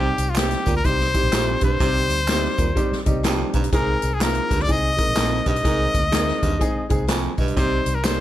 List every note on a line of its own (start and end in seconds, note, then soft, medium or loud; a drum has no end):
0.00 0.11 C2 medium
0.00 0.12 C3 medium
0.00 0.25 G3 medium
0.00 0.25 C4 medium
0.00 0.25 D#4 medium
0.00 0.26 G4 medium
0.00 0.31 G4 medium
0.18 0.54 C2 medium
0.18 closed hi-hat medium
0.18 tambourine medium
0.30 0.40 F4 medium
0.36 0.73 G3 medium
0.36 0.73 C4 medium
0.36 0.73 D#4 medium
0.36 0.73 G4 medium
0.36 0.76 G4 medium
0.36 snare medium
0.36 clap medium
0.36 closed hi-hat medium
0.36 tambourine loud
0.51 snare soft
0.51 closed hi-hat soft
0.66 0.80 D2 medium
0.66 0.81 A#2 medium
0.66 kick medium
0.66 closed hi-hat medium
0.66 tambourine medium
0.77 0.87 A#4 medium
0.84 1.14 C2 medium
0.84 1.05 G3 medium
0.84 1.05 C4 medium
0.84 1.05 D#4 medium
0.84 1.06 G4 medium
0.84 1.63 C5 loud
0.84 kick medium
0.84 closed hi-hat medium
0.84 tambourine soft
1.01 snare soft
1.14 1.27 G3 medium
1.14 1.27 C4 medium
1.14 1.27 D#4 medium
1.14 1.27 G4 medium
1.14 kick medium
1.14 closed hi-hat medium
1.14 tambourine medium
1.23 1.30 A#1 medium
1.31 1.56 F2 medium
1.31 1.69 G3 medium
1.31 1.69 C4 medium
1.31 1.69 D#4 medium
1.31 1.69 G4 medium
1.31 snare loud
1.31 clap medium
1.31 closed hi-hat medium
1.31 tambourine medium
1.61 1.76 B1 medium
1.61 1.77 G2 medium
1.61 3.03 C5 medium
1.61 kick medium
1.61 closed hi-hat medium
1.61 tambourine soft
1.80 2.10 C2 loud
1.80 2.04 C3 medium
1.80 2.17 G3 medium
1.80 2.17 C4 medium
1.80 2.17 D#4 medium
1.80 2.17 G4 medium
1.80 kick loud
1.80 closed hi-hat medium
1.80 tambourine soft
2.10 2.46 D2 medium
2.10 closed hi-hat medium
2.10 tambourine medium
2.28 2.65 G3 medium
2.28 2.65 C4 medium
2.28 2.65 D#4 medium
2.28 2.66 G4 medium
2.28 snare medium
2.28 clap loud
2.28 closed hi-hat medium
2.28 tambourine loud
2.44 snare soft
2.58 2.72 D#2 medium
2.58 2.73 A#2 medium
2.58 kick medium
2.58 closed hi-hat medium
2.58 tambourine medium
2.75 2.96 G3 medium
2.75 2.97 C4 medium
2.75 2.97 D#4 medium
2.75 2.97 G4 medium
2.75 kick medium
2.75 closed hi-hat medium
2.75 tambourine soft
2.92 muted fingered electric bass stroke soft
2.92 snare soft
3.06 3.43 C2 medium
3.06 3.19 G3 medium
3.06 3.19 C4 medium
3.06 3.19 D#4 medium
3.06 3.19 G4 medium
3.06 3.23 D#5 medium
3.06 kick medium
3.06 closed hi-hat medium
3.06 tambourine medium
3.24 3.48 F2 medium
3.24 3.61 G3 medium
3.24 3.61 C4 medium
3.24 3.61 D#4 medium
3.24 3.62 G4 medium
3.24 3.53 G5 medium
3.24 snare loud
3.24 clap medium
3.24 closed hi-hat medium
3.24 tambourine medium
3.54 3.68 B1 medium
3.54 3.69 G2 medium
3.54 3.72 A#5 medium
3.54 kick medium
3.54 closed hi-hat medium
3.54 tambourine soft
3.64 closed hi-hat medium
3.72 3.95 C2 medium
3.72 3.96 G#2 medium
3.72 4.09 G#3 medium
3.72 4.09 C4 medium
3.72 4.10 D#4 medium
3.72 4.10 G#4 medium
3.72 4.16 A#4 medium
3.72 kick loud
3.72 closed hi-hat medium
3.72 tambourine soft
4.02 4.39 C2 medium
4.02 closed hi-hat medium
4.02 tambourine medium
4.14 4.25 G#4 medium
4.20 4.57 G#3 medium
4.20 4.57 C4 medium
4.20 4.57 D#4 medium
4.20 4.58 F4 medium
4.20 4.63 A#4 medium
4.20 snare medium
4.20 clap loud
4.20 closed hi-hat medium
4.20 tambourine loud
4.35 closed hi-hat soft
4.50 4.65 D2 medium
4.50 4.65 G2 medium
4.50 kick medium
4.50 closed hi-hat medium
4.50 tambourine soft
4.59 4.73 D5 medium
4.59 snare soft
4.67 4.98 C2 medium
4.67 4.89 G#3 medium
4.67 4.89 C4 medium
4.67 4.89 D#4 medium
4.67 4.89 G#4 medium
4.67 kick medium
4.67 closed hi-hat medium
4.67 tambourine soft
4.72 5.48 D#5 loud
4.97 5.10 G#3 medium
4.97 5.11 C4 medium
4.97 5.11 D#4 medium
4.97 5.11 A#4 medium
4.97 kick medium
4.97 closed hi-hat medium
4.97 tambourine medium
5.08 5.15 A#1 medium
5.15 5.39 A#1 medium
5.15 5.40 F2 medium
5.15 5.52 G#3 medium
5.15 5.53 C4 medium
5.15 5.53 D#4 medium
5.15 5.53 A#4 medium
5.15 snare loud
5.15 clap medium
5.15 closed hi-hat medium
5.15 tambourine medium
5.46 5.60 B1 medium
5.46 5.61 G2 medium
5.46 6.88 D#5 medium
5.46 kick medium
5.46 closed hi-hat medium
5.46 tambourine soft
5.56 closed hi-hat medium
5.63 5.87 C2 loud
5.63 5.89 G#2 medium
5.63 6.01 G#3 medium
5.63 6.01 C4 medium
5.63 6.01 D#4 medium
5.63 6.01 A#4 medium
5.63 kick loud
5.63 closed hi-hat medium
5.63 tambourine soft
5.94 6.31 D2 medium
5.94 kick medium
5.94 closed hi-hat medium
5.94 tambourine medium
6.12 6.49 G#3 medium
6.12 6.49 C4 medium
6.12 6.50 D#4 medium
6.12 6.50 A#4 medium
6.12 snare medium
6.12 clap loud
6.12 closed hi-hat medium
6.12 tambourine loud
6.28 snare soft
6.42 6.56 D#2 medium
6.42 6.57 G2 medium
6.42 kick medium
6.42 closed hi-hat medium
6.42 tambourine medium
6.59 6.80 G#3 medium
6.59 6.81 C4 medium
6.59 6.81 D#4 medium
6.59 6.81 G#4 medium
6.59 kick medium
6.59 closed hi-hat medium
6.59 tambourine medium
6.75 muted fingered electric bass stroke soft
6.89 7.27 C2 medium
6.89 7.03 G#3 medium
6.89 7.03 C4 medium
6.89 7.03 D#4 medium
6.89 7.03 G#4 medium
6.89 kick medium
6.89 closed hi-hat medium
6.89 tambourine medium
7.08 7.33 F2 medium
7.08 7.37 C5 medium
7.08 7.37 G#5 medium
7.08 snare loud
7.08 clap medium
7.08 closed hi-hat medium
7.08 tambourine medium
7.38 7.52 B1 medium
7.38 7.53 G2 medium
7.38 7.55 G4 medium
7.38 7.84 D#5 medium
7.38 kick medium
7.38 open hi-hat soft
7.38 tambourine soft
7.48 closed hi-hat medium
7.56 7.79 C2 loud
7.56 7.80 C3 medium
7.56 7.93 G3 medium
7.56 7.93 C4 medium
7.56 7.93 D#4 medium
7.56 7.94 G4 medium
7.56 7.96 C5 medium
7.56 kick loud
7.56 closed hi-hat medium
7.56 tambourine soft
7.86 8.20 C2 medium
7.86 closed hi-hat medium
7.86 tambourine medium
7.95 8.06 A#4 medium
8.04 8.20 G3 medium
8.04 8.20 C4 medium
8.04 8.20 D#4 medium
8.04 8.20 A#4 medium
8.04 8.20 C5 medium
8.04 snare loud
8.04 clap loud
8.04 closed hi-hat medium
8.04 tambourine loud